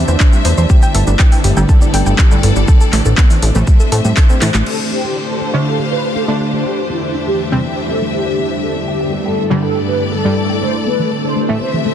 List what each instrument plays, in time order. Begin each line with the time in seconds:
Already playing: synth drone D3 A3, ambient pad G3 D4 E4 C5, string section D4 G4 C5 E5
0.08 analog synth bass E2, synth arpeggio sound C5, shaker
0.20 synth arpeggio sound D4, kick, clap, shaker
0.33 synth arpeggio sound G3, shaker
0.45 analog synth bass E2, synth arpeggio sound C5, open hi-hat
0.58 analog synth bass E2, synth arpeggio sound C5, shaker
0.70 ambient pad A3 G4 B4, string section B3, synth arpeggio sound G4, kick, shaker
0.78 string section E4
0.82 synth arpeggio sound G5, shaker
0.95 analog synth bass G1, synth arpeggio sound A4, open hi-hat
1.07 analog synth bass G1, synth arpeggio sound D4, shaker
1.19 synth arpeggio sound G5, kick, clap, shaker
1.32 string section A4, synth arpeggio sound G5, open hi-hat, shaker
1.44 analog synth bass G1, synth arpeggio sound G4, open hi-hat
1.57 analog synth bass G1, synth stab G2 D3 G3, string section D5, synth arpeggio sound G5, shaker
1.69 synth arpeggio sound A4, kick, shaker
1.82 synth arpeggio sound D4, shaker
1.94 analog synth bass G1, synth arpeggio sound G5, open hi-hat
2.06 analog synth bass G1, synth arpeggio sound G5, shaker
2.19 synth arpeggio sound G4, kick, clap, shaker
2.31 synth stab G2 D3 G3, synth arpeggio sound G5, shaker
2.43 analog synth bass G1, synth arpeggio sound A4, open hi-hat
2.56 analog synth bass G1, synth arpeggio sound D4, shaker
2.68 ambient pad A3 C4 E4 C5, string section D4, synth arpeggio sound A4, kick, shaker
2.81 string section G4, synth arpeggio sound A4, shaker
2.93 analog synth bass A1, synth arpeggio sound A3, clap, open hi-hat
3.00 string section C5
3.06 analog synth bass A1, synth arpeggio sound A4, shaker
3.18 synth arpeggio sound B3, kick, clap, shaker
3.30 synth arpeggio sound E3, open hi-hat, shaker
3.42 analog synth bass A1, synth arpeggio sound A4, open hi-hat
3.55 analog synth bass A1, synth stab A2 E3 A3, synth arpeggio sound A4, string section E5, shaker
3.67 synth arpeggio sound A3, kick, shaker
3.80 synth arpeggio sound A4, shaker
3.92 analog synth bass A2, synth arpeggio sound A3, open hi-hat
4.05 analog synth bass A2, synth arpeggio sound G3, shaker
4.17 synth arpeggio sound A4, kick, clap, open hi-hat, shaker
4.30 synth arpeggio sound C4, shaker
4.42 analog synth bass A2, synth arpeggio sound E3, clap, open hi-hat
4.54 analog synth bass A1, synth arpeggio sound A3, clap, shaker
4.66 synth drone D3 A3, ambient pad A3 D4 F4 D5, synth arpeggio sound D4, analog polysynth A4, crash
4.79 synth arpeggio sound D5
4.91 synth arpeggio sound E4, analog polysynth G4
5.04 synth arpeggio sound A3
5.16 synth arpeggio sound D5
5.29 analog polysynth A4, synth arpeggio sound D5
5.41 synth arpeggio sound D4
5.48 string section F5
5.54 synth stab D3 A3 D4
5.66 synth arpeggio sound E4, analog polysynth A4
5.79 synth arpeggio sound A3
5.90 analog polysynth B4, synth arpeggio sound D5
6.03 synth arpeggio sound D5
6.15 synth arpeggio sound D4, analog polysynth A4
6.28 synth stab D3 A3 D4, synth arpeggio sound D5
6.40 synth arpeggio sound E4
6.53 synth arpeggio sound A3
6.65 ambient pad E2 G3 E4 C5, string section E3, analog polysynth G4, synth arpeggio sound C5
6.78 synth arpeggio sound C5
6.90 synth arpeggio sound C4, analog polysynth E4
6.94 string section E5
7.02 synth arpeggio sound C5
7.14 synth arpeggio sound D4
7.27 synth arpeggio sound G3, analog polysynth G4
7.39 synth arpeggio sound C5
7.52 synth stab E2 C3 G3 C4, synth arpeggio sound C5
7.64 synth arpeggio sound C4, analog polysynth G4
7.77 synth arpeggio sound C5
7.89 synth arpeggio sound D4, analog polysynth A4
8.02 synth arpeggio sound G3
8.14 analog polysynth G4, synth arpeggio sound C5
8.26 synth arpeggio sound C5
8.38 synth arpeggio sound C4
8.51 synth arpeggio sound C5
8.63 string section G2, ambient pad A3 G4 B4, synth arpeggio sound A4, analog polysynth A4
8.76 synth arpeggio sound D4
8.88 analog polysynth G4, synth arpeggio sound G5
8.96 string section B3
9.01 synth arpeggio sound G5
9.13 synth arpeggio sound G4
9.21 string section E4
9.26 analog polysynth A4, synth arpeggio sound G5
9.38 synth arpeggio sound A4
9.44 string section A4
9.50 synth stab G2 D3 G3, synth arpeggio sound D4, string section D5
9.62 analog polysynth A4, synth arpeggio sound G5
9.75 synth arpeggio sound G5
9.87 synth arpeggio sound G4, analog polysynth B4
10.00 synth arpeggio sound G5
10.12 analog polysynth A4, synth arpeggio sound A4
10.25 synth stab G2 D3 G3, synth arpeggio sound D4
10.37 synth arpeggio sound G5
10.49 synth arpeggio sound G5
10.61 string section A3, synth arpeggio sound A3, ambient pad C4 E4 C5, analog polysynth C5
10.74 synth arpeggio sound A4
10.86 synth arpeggio sound B3, analog polysynth B4
10.99 synth arpeggio sound E3, string section D4
11.11 synth arpeggio sound A4
11.24 synth arpeggio sound A4, analog polysynth C5, string section C5
11.36 synth arpeggio sound A3, string section G4
11.48 synth stab A2 E3 A3, synth arpeggio sound A4, string section E5
11.61 synth arpeggio sound B3, analog polysynth C5
11.73 synth arpeggio sound E3
11.85 synth arpeggio sound A3, analog polysynth A4